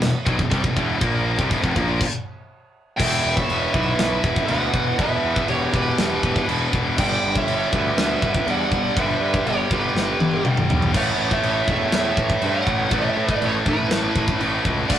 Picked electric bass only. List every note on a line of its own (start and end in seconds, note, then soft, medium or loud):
0.00 0.12 E1 medium
0.27 0.38 B1 loud
0.39 0.50 E1 medium
0.51 0.63 C2 loud
0.64 0.75 E1 medium
0.77 1.00 E1 loud
1.01 1.36 A#1 loud
1.39 1.50 C2 medium
1.51 1.62 E1 medium
1.63 1.75 F1 medium
1.76 1.99 A#1 loud
3.00 3.18 E1 medium
3.25 3.42 E1 medium
3.48 3.66 E1 medium
3.75 3.92 B1 medium
4.00 4.17 B1 loud
4.23 4.41 E1 medium
4.50 4.67 D2 medium
4.73 4.91 E1 medium
4.98 5.16 E1 loud
5.24 5.41 E2 medium
5.49 5.66 E1 medium
5.73 5.91 E1 medium
5.99 6.16 E1 loud
6.23 6.40 E1 loud
6.48 6.65 E1 medium
6.73 6.90 E1 medium
6.98 7.15 G1 loud
7.24 7.41 G1 loud
7.47 7.65 G1 loud
7.73 7.90 D2 loud
7.97 8.14 D2 medium
8.22 8.40 G1 medium
8.46 8.64 E2 medium
8.71 8.89 G1 medium
8.97 9.14 G1 loud
9.20 9.38 G2 medium
9.45 9.63 G1 loud
9.70 9.88 G1 medium
9.95 10.13 G1 medium
10.19 10.37 G1 medium
10.43 10.61 G1 medium
10.69 10.87 B1 medium
10.94 11.12 A1 loud
11.17 11.35 A1 medium
11.43 11.61 A1 loud
11.68 11.86 E1 medium
11.93 12.11 E2 medium
12.18 12.35 A1 medium
12.42 12.60 G2 medium
12.67 12.84 A1 medium
12.91 13.09 A1 loud
13.17 13.34 A2 medium
13.42 13.59 A1 medium
13.66 13.84 A1 loud
13.90 14.08 A1 loud
14.16 14.33 A1 medium
14.39 14.57 A1 medium
14.65 14.83 C#2 medium
14.90 14.99 D2 medium